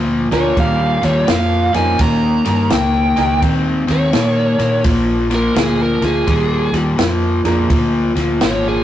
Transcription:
0.00 0.27 D2 medium
0.00 0.27 A#2 medium
0.00 0.27 F3 medium
0.31 0.55 D2 medium
0.31 0.55 A#2 medium
0.31 0.55 F3 medium
0.31 1.23 A#3 medium
0.31 1.23 D4 medium
0.31 1.24 F4 medium
0.31 1.24 A#4 medium
0.31 0.58 C#5 medium
0.31 1.24 G#5 medium
0.31 snare soft
0.31 ride medium
0.57 0.98 D#2 medium
0.57 0.98 A#2 medium
0.57 0.99 G3 medium
0.57 1.03 F5 medium
0.57 kick loud
0.57 ride medium
1.02 1.26 D#2 medium
1.02 1.25 A#2 medium
1.02 1.26 G3 medium
1.02 1.28 C#5 loud
1.02 snare soft
1.02 ride medium
1.27 1.70 F2 medium
1.27 1.69 A#2 medium
1.27 1.70 F3 medium
1.27 1.74 F5 medium
1.27 snare loud
1.27 ride medium
1.73 1.97 F2 medium
1.73 1.97 A#2 medium
1.73 1.97 F3 medium
1.73 2.66 G3 medium
1.73 2.66 A#3 medium
1.73 2.66 C#4 medium
1.73 2.66 D#4 medium
1.73 2.67 A#4 medium
1.73 2.00 G#5 medium
1.73 snare soft
1.73 ride medium
1.99 2.41 D#2 medium
1.99 2.41 D#3 medium
1.99 2.41 A#3 medium
1.99 2.70 A#5 loud
1.99 kick loud
1.99 snare soft
1.99 ride medium
2.45 2.69 G2 medium
2.45 2.68 D#3 medium
2.45 2.68 A#3 medium
2.45 snare soft
2.45 ride medium
2.70 3.12 C#2 medium
2.70 3.12 D#3 medium
2.70 3.12 A#3 medium
2.70 3.41 G5 medium
2.70 snare loud
2.70 ride medium
3.16 3.40 C#2 medium
3.16 3.39 D#3 medium
3.16 4.08 A#3 medium
3.16 3.40 A#3 medium
3.16 4.09 D#4 medium
3.16 4.09 G4 medium
3.16 4.09 A#4 medium
3.16 snare soft
3.16 ride medium
3.41 3.83 D#2 medium
3.41 3.83 D#3 medium
3.41 3.84 C4 medium
3.41 kick loud
3.41 ride medium
3.87 4.11 D#2 medium
3.87 4.11 D#3 medium
3.87 4.11 C4 medium
3.87 snare soft
3.87 ride medium
3.92 4.83 C#5 loud
4.13 4.55 A#2 medium
4.13 4.55 D#3 medium
4.13 4.55 A#3 medium
4.13 snare loud
4.13 ride medium
4.59 4.82 A#2 medium
4.59 4.82 D#3 medium
4.59 4.82 A#3 medium
4.59 snare soft
4.59 ride medium
4.84 5.48 A#1 medium
4.84 5.26 A#2 medium
4.84 5.26 F3 medium
4.84 kick loud
4.84 snare soft
4.84 ride medium
5.30 5.53 A#2 medium
5.30 5.54 F3 medium
5.30 snare soft
5.30 ride medium
5.35 5.57 A#4 medium
5.55 5.97 D2 medium
5.55 5.97 A#2 medium
5.55 5.98 F3 medium
5.55 5.80 G#4 medium
5.55 snare loud
5.55 ride medium
5.82 6.04 A#4 medium
6.02 6.25 D2 medium
6.02 6.25 A#2 medium
6.02 6.25 F3 medium
6.02 snare soft
6.02 ride medium
6.06 6.74 G#4 medium
6.27 6.69 D#2 medium
6.27 6.69 A#2 medium
6.27 6.69 G3 medium
6.27 kick medium
6.27 ride medium
6.73 6.96 D#2 medium
6.73 6.96 A#2 medium
6.73 6.97 G3 medium
6.73 snare soft
6.73 ride medium
6.98 7.40 F2 medium
6.98 7.40 A#2 medium
6.98 7.40 F3 medium
6.98 snare loud
6.98 ride medium
7.44 7.67 F2 medium
7.44 7.68 A#2 medium
7.44 7.68 F3 medium
7.44 7.67 A#3 medium
7.44 7.67 D4 medium
7.44 7.68 F4 medium
7.44 7.68 G#4 medium
7.44 7.68 A#4 medium
7.44 snare soft
7.44 ride medium
7.70 8.11 D2 medium
7.70 8.11 A#2 medium
7.70 8.12 F3 medium
7.70 kick loud
7.70 ride medium
8.16 8.38 D2 medium
8.16 8.39 A#2 medium
8.16 8.39 F3 medium
8.16 snare soft
8.16 ride medium
8.41 8.82 G#1 medium
8.41 8.83 A#2 medium
8.41 8.83 F3 medium
8.41 8.66 C#5 loud
8.41 snare loud
8.41 ride medium
8.68 8.84 G#4 medium

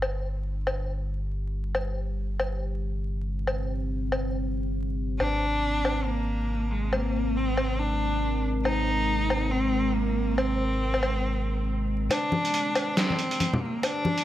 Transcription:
0.00 5.18 G1 medium
0.00 5.16 G3 medium
0.00 1.71 D4 medium
0.00 5.16 G4 medium
0.00 low woodblock medium
0.67 low woodblock medium
1.75 5.17 C4 medium
1.75 low woodblock medium
2.40 low woodblock medium
3.47 low woodblock medium
4.12 low woodblock medium
5.20 12.09 G#1 medium
5.20 12.07 G#3 medium
5.20 12.07 C4 medium
5.20 6.08 D4 loud
5.20 12.07 A#4 medium
5.20 low woodblock medium
5.85 low woodblock medium
6.06 6.72 A#3 medium
6.71 6.94 G#3 medium
6.93 7.37 A#3 medium
6.93 low woodblock medium
7.36 7.81 C4 medium
7.57 low woodblock medium
7.79 8.44 D4 medium
8.65 9.53 D#4 loud
8.65 low woodblock medium
9.30 low woodblock medium
9.52 9.97 C4 medium
9.95 10.40 A#3 medium
10.38 11.68 C4 medium
10.38 low woodblock medium
10.94 low woodblock medium
11.03 low woodblock medium
12.10 12.74 G1 medium
12.10 14.24 G3 medium
12.10 14.24 D4 medium
12.10 12.99 D4 loud
12.10 14.24 G4 medium
12.10 kick loud
12.10 closed hi-hat medium
12.10 low woodblock medium
12.32 high conga medium
12.45 closed hi-hat medium
12.54 closed hi-hat medium
12.75 13.60 G#1 loud
12.75 kick medium
12.75 closed hi-hat medium
12.75 low woodblock medium
12.97 13.64 C4 loud
12.97 snare loud
12.97 closed hi-hat medium
13.10 high conga medium
13.19 closed hi-hat medium
13.31 closed hi-hat medium
13.40 closed hi-hat medium
13.40 high conga medium
13.53 low conga loud
13.62 13.85 A#3 medium
13.83 14.24 D4 loud
13.83 kick loud
13.83 closed hi-hat medium
13.83 low woodblock medium
14.05 high conga loud
14.18 closed hi-hat medium

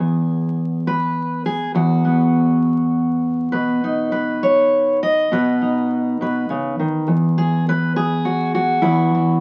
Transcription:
0.00 1.74 E2 medium
0.00 2.04 B3 soft
0.00 0.87 G#4 soft
0.87 1.45 B4 medium
1.46 1.75 G#4 medium
1.75 3.53 E2 medium
1.75 3.53 F#4 medium
2.05 3.83 B3 soft
3.52 5.30 B2 medium
3.52 4.11 B4 medium
3.84 5.28 D#4 soft
4.12 5.01 B4 medium
4.43 5.02 C#5 medium
5.03 5.91 D#5 loud
5.32 6.20 B2 medium
5.32 6.21 B4 medium
5.62 7.05 D#4 soft
6.21 6.49 B2 medium
6.21 7.09 B4 medium
6.50 6.79 C#3 medium
6.79 7.08 D#3 medium
7.08 8.82 E2 medium
7.38 7.67 G#4 medium
7.69 7.96 B4 loud
7.96 8.84 G#4 loud
8.25 8.53 F#4 medium
8.55 9.40 F#4 medium
8.82 9.40 E2 medium
8.82 9.40 E4 medium

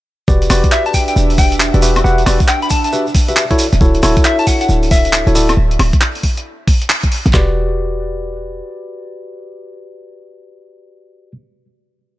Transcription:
0.28 0.48 E1 loud
0.28 5.58 D4 medium
0.28 0.48 F#4 medium
0.28 0.48 G4 medium
0.28 0.48 B4 medium
0.28 0.48 D5 medium
0.28 5.58 E5 medium
0.28 kick loud
0.28 shekere medium
0.42 closed hi-hat medium
0.42 shekere soft
0.50 0.62 E1 medium
0.50 1.71 F#4 loud
0.50 1.71 G4 medium
0.50 1.71 B4 medium
0.50 1.71 D5 loud
0.50 snare medium
0.50 open hi-hat loud
0.50 high woodblock medium
0.50 shekere loud
0.64 kick loud
0.64 closed hi-hat medium
0.64 shekere soft
0.72 0.83 E5 medium
0.72 clap loud
0.72 shekere soft
0.86 0.93 A5 medium
0.86 closed hi-hat soft
0.86 shekere soft
0.94 1.03 G5 medium
0.94 kick medium
0.94 open hi-hat loud
0.94 shekere medium
1.08 1.13 G5 medium
1.08 closed hi-hat medium
1.08 shekere soft
1.16 1.71 E1 medium
1.16 shekere medium
1.30 open hi-hat medium
1.30 shekere soft
1.38 1.53 G5 medium
1.38 kick loud
1.38 open hi-hat loud
1.38 shekere medium
1.52 closed hi-hat medium
1.52 shekere soft
1.60 clap loud
1.60 shekere soft
1.74 2.03 E1 loud
1.74 1.81 F#4 medium
1.74 1.81 G4 medium
1.74 1.81 B4 medium
1.74 1.81 D5 medium
1.74 closed hi-hat medium
1.74 shekere soft
1.82 2.00 F#4 medium
1.82 2.00 G4 medium
1.82 2.00 B4 medium
1.82 2.00 E5 medium
1.82 open hi-hat loud
1.82 shekere loud
1.96 snare soft
1.96 closed hi-hat medium
1.96 high woodblock medium
1.96 shekere soft
2.04 2.24 E1 loud
2.04 2.22 F#4 medium
2.04 2.22 G4 medium
2.04 2.22 B4 medium
2.04 2.22 F#5 loud
2.04 shekere soft
2.18 closed hi-hat medium
2.18 shekere soft
2.26 2.38 E1 medium
2.26 2.39 F#4 loud
2.26 2.39 G4 medium
2.26 2.39 B4 medium
2.26 2.39 D5 loud
2.26 snare medium
2.26 open hi-hat loud
2.26 high woodblock medium
2.26 shekere loud
2.40 kick loud
2.40 closed hi-hat medium
2.40 shekere soft
2.48 2.60 G5 medium
2.48 clap loud
2.48 shekere medium
2.62 2.69 B5 medium
2.62 closed hi-hat soft
2.62 shekere soft
2.70 2.79 A5 medium
2.70 kick medium
2.70 open hi-hat loud
2.70 shekere loud
2.84 2.90 A5 medium
2.84 closed hi-hat medium
2.84 shekere soft
2.92 3.06 F#4 medium
2.92 3.06 G4 medium
2.92 3.06 B4 medium
2.92 3.06 E5 medium
2.92 shekere medium
3.07 shekere soft
3.15 kick loud
3.15 open hi-hat loud
3.15 shekere medium
3.28 3.43 F#4 medium
3.28 3.43 G4 medium
3.28 3.43 B4 medium
3.28 3.43 E5 medium
3.28 closed hi-hat medium
3.28 shekere soft
3.36 clap loud
3.36 shekere medium
3.51 3.66 E4 loud
3.51 3.66 F#4 medium
3.51 3.66 A4 medium
3.51 3.66 C#5 loud
3.51 kick medium
3.51 closed hi-hat medium
3.51 shekere soft
3.59 open hi-hat loud
3.59 shekere loud
3.72 3.80 D1 loud
3.72 snare soft
3.72 closed hi-hat medium
3.72 shekere soft
3.81 4.01 D1 loud
3.81 4.01 E4 medium
3.81 4.01 F#4 medium
3.81 4.01 A4 medium
3.81 4.01 C#5 loud
3.81 kick loud
3.81 shekere medium
3.94 closed hi-hat medium
3.94 shekere soft
4.03 4.15 D1 medium
4.03 5.24 E4 loud
4.03 5.24 F#4 medium
4.03 5.24 A4 medium
4.03 5.24 C#5 loud
4.03 snare medium
4.03 open hi-hat loud
4.03 high woodblock medium
4.03 shekere medium
4.17 kick loud
4.17 closed hi-hat medium
4.17 shekere soft
4.25 4.36 E5 loud
4.25 clap loud
4.25 shekere medium
4.39 4.46 A5 medium
4.39 closed hi-hat soft
4.39 shekere soft
4.47 4.56 F#5 medium
4.47 kick medium
4.47 open hi-hat loud
4.47 shekere loud
4.61 4.66 F#5 medium
4.61 closed hi-hat medium
4.61 shekere soft
4.69 5.24 D1 medium
4.69 shekere medium
4.83 open hi-hat medium
4.83 shekere soft
4.91 5.35 E5 loud
4.91 kick loud
4.91 open hi-hat loud
4.91 shekere medium
5.05 closed hi-hat medium
5.05 shekere soft
5.13 clap loud
5.13 shekere medium
5.27 5.55 D1 loud
5.27 5.34 E4 medium
5.27 5.34 F#4 medium
5.27 5.34 A4 medium
5.27 5.34 C#5 medium
5.27 closed hi-hat medium
5.27 shekere soft
5.35 5.53 E4 medium
5.35 5.53 F#4 medium
5.35 5.53 A4 medium
5.35 5.53 D5 medium
5.35 open hi-hat loud
5.35 shekere loud
5.49 snare soft
5.49 closed hi-hat medium
5.49 high woodblock medium
5.49 shekere soft
5.57 5.77 D1 loud
5.71 closed hi-hat medium
5.79 5.91 D1 medium
5.79 snare medium
5.79 open hi-hat loud
5.79 high woodblock medium
5.93 kick loud
5.93 closed hi-hat medium
6.01 clap loud
6.15 open hi-hat medium
6.23 kick medium
6.23 open hi-hat loud
6.37 closed hi-hat medium
6.68 kick loud
6.68 open hi-hat loud
6.82 closed hi-hat medium
6.90 clap loud
7.04 kick medium
7.04 closed hi-hat medium
7.12 open hi-hat loud
7.26 7.33 A1 loud
7.26 snare soft
7.26 closed hi-hat medium
7.34 8.62 E1 loud
7.34 11.31 F#4 medium
7.34 11.31 G4 medium
7.34 11.31 B4 medium
7.34 11.31 D5 loud
7.34 kick loud
7.34 snare loud
7.34 clap medium

